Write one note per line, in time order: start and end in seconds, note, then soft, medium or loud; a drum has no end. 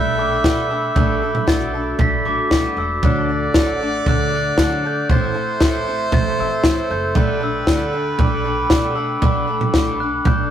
0.00 0.36 B1 loud
0.00 0.18 G3 medium
0.00 0.19 A3 medium
0.00 0.18 D4 medium
0.00 0.16 A4 medium
0.00 2.98 A4 medium
0.00 2.77 E5 loud
0.00 0.94 G5 medium
0.00 2.99 B5 loud
0.00 0.17 G6 loud
0.18 0.44 A3 medium
0.18 0.44 D4 medium
0.18 0.44 A4 medium
0.18 0.67 D6 medium
0.44 0.70 B2 loud
0.44 0.88 B2 loud
0.44 0.70 G3 medium
0.44 0.71 A3 medium
0.44 0.70 D4 medium
0.44 0.69 A4 medium
0.44 kick loud
0.44 snare loud
0.70 0.95 A3 soft
0.70 0.95 D4 medium
0.70 0.95 A4 medium
0.70 0.97 E6 medium
0.95 1.18 B1 loud
0.95 1.22 B2 medium
0.95 1.22 G3 medium
0.95 1.22 A3 loud
0.95 1.22 D4 loud
0.95 3.01 F#4 medium
0.95 1.21 A4 loud
0.95 1.44 G6 loud
0.95 kick loud
0.95 floor tom loud
1.22 1.47 A3 soft
1.22 1.47 D4 soft
1.22 1.47 A4 medium
1.35 floor tom medium
1.47 1.92 B1 loud
1.47 1.73 B2 medium
1.47 1.74 G3 medium
1.47 1.74 A3 medium
1.47 1.74 D4 medium
1.47 1.73 A4 loud
1.47 1.96 A6 loud
1.47 kick loud
1.47 snare loud
1.74 1.99 A3 soft
1.74 1.99 D4 soft
1.74 2.00 A4 medium
1.99 2.21 B1 loud
1.99 2.25 G3 medium
1.99 2.26 A3 medium
1.99 2.25 D4 medium
1.99 2.25 A4 medium
1.99 2.27 B6 loud
1.99 kick loud
1.99 floor tom loud
2.25 2.36 B1 medium
2.25 2.50 A3 soft
2.25 2.51 D4 medium
2.25 2.51 A4 medium
2.25 2.79 D6 loud
2.51 2.62 B1 loud
2.51 2.77 B2 medium
2.51 2.77 G3 medium
2.51 2.77 A3 medium
2.51 2.77 D4 medium
2.51 2.76 A4 loud
2.51 kick loud
2.51 snare loud
2.77 2.99 E1 medium
2.77 3.02 A3 soft
2.77 3.03 D4 soft
2.77 3.03 A4 soft
2.77 3.02 E6 loud
3.02 3.47 D2 loud
3.02 3.29 D3 medium
3.02 3.29 F#3 medium
3.02 3.29 A3 medium
3.02 3.29 D4 medium
3.02 5.07 A4 medium
3.02 3.28 A4 medium
3.02 5.11 D5 loud
3.02 5.07 F#5 medium
3.02 5.07 D6 loud
3.02 4.07 F#6 medium
3.02 kick loud
3.02 floor tom loud
3.29 3.54 A3 soft
3.29 3.54 D4 soft
3.29 3.55 A4 medium
3.54 3.98 A1 medium
3.54 3.80 D3 medium
3.54 3.81 F#3 medium
3.54 3.81 A3 medium
3.54 3.80 D4 medium
3.54 3.79 A4 medium
3.54 kick loud
3.54 snare loud
3.81 4.06 A3 medium
3.81 4.07 D4 medium
3.81 4.06 A4 medium
4.06 4.50 D2 loud
4.06 4.32 F#3 medium
4.06 4.33 A3 medium
4.06 4.33 D4 medium
4.06 4.31 A4 medium
4.06 4.34 F#6 loud
4.06 kick loud
4.06 floor tom loud
4.32 4.58 A3 soft
4.32 4.58 D4 medium
4.32 4.58 A4 medium
4.32 4.58 F#6 medium
4.57 5.01 D3 medium
4.57 4.84 D3 medium
4.57 4.84 F#3 medium
4.57 4.84 A3 medium
4.57 4.84 D4 medium
4.57 4.83 A4 medium
4.57 kick loud
4.57 snare loud
4.84 5.10 A3 soft
4.84 5.10 D4 soft
4.84 5.10 A4 medium
4.84 5.12 G6 loud
5.09 5.31 A1 loud
5.09 5.35 A2 medium
5.09 5.36 E3 medium
5.09 5.36 A3 medium
5.09 5.35 C4 loud
5.09 5.34 E4 medium
5.09 10.51 A4 medium
5.09 5.33 A4 medium
5.09 7.17 C5 loud
5.09 7.14 E5 medium
5.09 7.14 C6 medium
5.09 6.12 A6 medium
5.09 kick loud
5.09 floor tom loud
5.34 5.60 A3 soft
5.34 5.60 C4 soft
5.34 5.61 E4 medium
5.34 5.61 A4 medium
5.60 6.05 A1 medium
5.60 5.86 A2 medium
5.60 5.87 E3 medium
5.60 5.87 A3 medium
5.60 5.87 C4 medium
5.60 5.87 E4 medium
5.60 5.86 A4 medium
5.60 kick loud
5.60 snare loud
5.88 6.12 A3 soft
5.88 6.13 C4 medium
5.88 6.13 E4 medium
5.88 6.13 A4 medium
6.12 6.35 A1 loud
6.12 6.39 A3 medium
6.12 6.39 C4 medium
6.12 6.38 E4 medium
6.12 6.37 A4 medium
6.12 6.37 A6 loud
6.12 kick loud
6.12 floor tom loud
6.38 6.49 A1 loud
6.38 6.65 A3 soft
6.38 6.65 C4 medium
6.38 6.65 E4 medium
6.38 6.64 A4 medium
6.38 6.92 E6 loud
6.64 6.75 A1 loud
6.64 6.90 A2 medium
6.64 6.91 E3 medium
6.64 6.91 A3 medium
6.64 6.91 C4 loud
6.64 6.90 E4 medium
6.64 6.89 A4 medium
6.64 kick loud
6.64 snare loud
6.90 7.12 F#1 medium
6.90 7.15 A3 soft
6.90 7.16 C4 medium
6.90 7.16 E4 medium
6.90 7.16 A4 medium
6.90 7.44 G6 loud
7.15 7.60 B1 loud
7.15 7.42 B2 medium
7.15 7.42 G3 medium
7.15 7.42 A3 loud
7.15 7.41 D4 medium
7.15 7.39 A4 medium
7.15 10.51 B4 loud
7.15 10.51 G5 medium
7.15 10.51 B5 loud
7.15 kick loud
7.15 floor tom loud
7.40 7.67 A3 soft
7.40 7.67 D4 medium
7.40 7.67 A4 medium
7.40 7.91 E6 medium
7.67 8.11 D2 medium
7.67 7.93 B2 medium
7.67 7.94 G3 medium
7.67 7.94 A3 medium
7.67 7.93 D4 loud
7.67 7.92 A4 medium
7.67 kick loud
7.67 snare loud
7.93 8.18 A3 soft
7.93 8.19 D4 medium
7.93 8.19 A4 medium
8.19 8.63 B1 loud
8.19 8.45 G3 medium
8.19 8.45 A3 medium
8.19 8.44 D4 medium
8.19 8.43 A4 medium
8.19 8.44 D6 medium
8.19 kick loud
8.19 floor tom loud
8.44 8.70 A3 soft
8.44 8.70 D4 medium
8.44 8.70 A4 medium
8.44 8.69 D6 medium
8.70 8.96 B2 medium
8.70 9.14 B2 loud
8.70 8.96 G3 medium
8.70 8.96 A3 medium
8.70 8.95 D4 medium
8.70 8.94 A4 loud
8.70 8.95 D6 medium
8.70 kick loud
8.70 snare loud
8.95 9.22 A3 soft
8.95 9.22 D4 soft
8.95 9.22 A4 medium
8.95 9.23 E6 medium
9.22 9.44 B1 loud
9.22 9.48 B2 medium
9.22 9.48 G3 medium
9.22 9.49 A3 medium
9.22 9.48 D4 medium
9.22 9.46 A4 medium
9.22 9.73 D6 medium
9.22 kick loud
9.22 floor tom loud
9.48 9.74 A3 soft
9.48 9.74 D4 soft
9.48 9.74 A4 medium
9.61 floor tom medium
9.74 10.18 B1 medium
9.74 10.00 B2 medium
9.74 10.00 G3 loud
9.74 10.00 A3 medium
9.74 10.01 D4 loud
9.74 10.00 A4 medium
9.74 10.01 D6 loud
9.74 kick loud
9.74 snare loud
10.00 10.26 A3 soft
10.00 10.27 D4 soft
10.00 10.26 A4 medium
10.00 10.27 F#6 loud
10.25 10.48 B1 loud
10.25 10.51 G3 medium
10.25 10.51 A3 medium
10.25 10.51 D4 medium
10.25 10.51 A4 medium
10.25 10.51 G6 medium
10.25 kick loud
10.25 floor tom loud